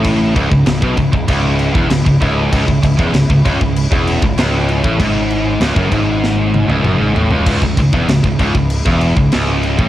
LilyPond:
<<
  \new Staff \with { instrumentName = "String section" } { \time 4/4 \key cis \minor \tempo 4 = 97 << { <cis gis e'>1~ | <cis gis e'>1~ | <cis gis e'>1 | <cis gis e'>1 | } \\ { dis'1 | cis'1~ | cis'1 | dis'1 | } >> }
  \new Staff \with { instrumentName = "Distorted electric guitar" } { \clef bass \time 4/4 \key cis \minor a,8 cis,16 cis,16 cis,16 b,16 cis,16 cis,16 cis,8. e,16 cis,16 cis,16 cis,8 | cis,16 cis,16 cis,16 e,16 cis,16 cis,16 cis,16 cis,8 e,8 cis,16 cis,8. a,16 | gis,4 cis,16 fis,16 gis,4~ gis,16 cis,16 fis,16 gis,16 a,16 cis,16 | cis,16 cis,16 cis,16 e,16 cis,16 cis,16 cis,16 cis,8 e,8 cis,16 cis,8. a,16 | }
  \new Staff \with { instrumentName = "Distorted electric guitar" } { \clef bass \time 4/4 \key cis \minor a,8 cis,16 cis,16 cis,16 b,16 cis,16 cis,16 cis,8. e,16 cis,16 cis,16 cis,8 | cis,16 cis,16 cis,16 e,16 cis,16 cis,16 cis,16 cis,8 e,8 cis,16 cis,8. a,16 | gis,4 cis,16 fis,16 gis,4~ gis,16 cis,16 fis,16 gis,16 a,16 cis,16 | cis,16 cis,16 cis,16 e,16 cis,16 cis,16 cis,16 cis,8 e,8 cis,16 cis,8. a,16 | }
  \new Staff \with { instrumentName = "Fingered electric bass" } { \clef bass \time 4/4 \key cis \minor a,,8 cis,,16 cis,,16 cis,,16 b,,16 cis,,16 cis,,16 cis,,8. e,,16 cis,,16 cis,,16 cis,,8 | cis,,16 cis,,16 cis,,16 e,,16 cis,,16 cis,,16 cis,,16 cis,,8 e,,8 cis,,16 cis,,8. a,,16 | gis,,4 cis,,16 fis,,16 gis,,4~ gis,,16 cis,,16 fis,,16 gis,,16 a,,16 cis,,16 | cis,,16 cis,,16 cis,,16 e,,16 cis,,16 cis,,16 cis,,16 cis,,8 e,,8 cis,,16 cis,,8. a,,16 | }
  \new DrumStaff \with { instrumentName = "Drums" } \drummode { \time 4/4 <cymc bd>8 <cymc bd>16 bd16 <cymc sn>16 bd16 <cymc bd>16 bd16 <cymc bd>8 cymc16 bd16 <cymc sn>16 bd16 <cymc bd>8 | <cymc bd>16 bd16 <cymc bd>16 bd16 <cymc sn>16 bd16 <cymc bd>16 bd16 cymc16 bd16 cymc16 bd16 <cymc sn>8 cymc16 bd16 | <cymc bd>8 cymc8 <cymc sn>16 bd16 <cymc bd>8 sn8 tommh16 tommh16 toml8 tomfh16 tomfh16 | <cymc bd>16 bd16 <cymc bd>16 bd16 <cymc sn>16 bd16 <cymc bd>16 bd16 cymc16 bd16 cymc16 bd16 <cymc sn>8 cymc16 bd16 | }
>>